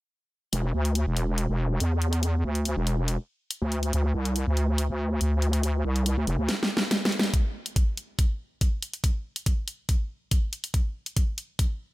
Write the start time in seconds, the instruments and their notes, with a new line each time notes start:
0.53 wobble bass E1, closed hi-hat
0.74 wobble bass D2
0.85 closed hi-hat
0.95 closed hi-hat
1.06 wobble bass E1
1.17 closed hi-hat
1.38 closed hi-hat
1.49 wobble bass E1
1.80 wobble bass E2, closed hi-hat
2.02 closed hi-hat
2.13 closed hi-hat
2.23 closed hi-hat
2.44 wobble bass D2
2.55 closed hi-hat
2.65 closed hi-hat
2.76 wobble bass E1
2.87 closed hi-hat
3.08 closed hi-hat
3.51 closed hi-hat
3.62 wobble bass D2
3.72 closed hi-hat
3.83 closed hi-hat
3.93 wobble bass D2, closed hi-hat
4.14 wobble bass C2
4.25 closed hi-hat
4.36 closed hi-hat
4.47 wobble bass D2
4.57 closed hi-hat
4.78 closed hi-hat
4.89 wobble bass D2
5.21 wobble bass D2, closed hi-hat
5.42 closed hi-hat
5.53 closed hi-hat
5.63 closed hi-hat
5.85 wobble bass C2
5.96 closed hi-hat
6.06 closed hi-hat
6.17 wobble bass D2
6.27 wobble bass F1, closed hi-hat
6.38 wobble bass D2
6.49 snare, closed hi-hat
6.63 snare
6.77 snare
6.91 snare, closed hi-hat
7.05 snare
7.12 closed hi-hat
7.19 snare, closed hi-hat
7.34 kick, closed hi-hat
7.66 closed hi-hat
7.76 kick, closed hi-hat
7.97 closed hi-hat
8.19 kick, closed hi-hat
8.61 kick, closed hi-hat
8.82 closed hi-hat
8.93 closed hi-hat
9.04 kick, closed hi-hat
9.36 closed hi-hat
9.46 kick, closed hi-hat
9.68 closed hi-hat
9.89 kick, closed hi-hat
10.31 kick, closed hi-hat
10.53 closed hi-hat
10.64 closed hi-hat
10.74 kick, closed hi-hat
11.06 closed hi-hat
11.17 kick, closed hi-hat
11.38 closed hi-hat
11.59 kick, closed hi-hat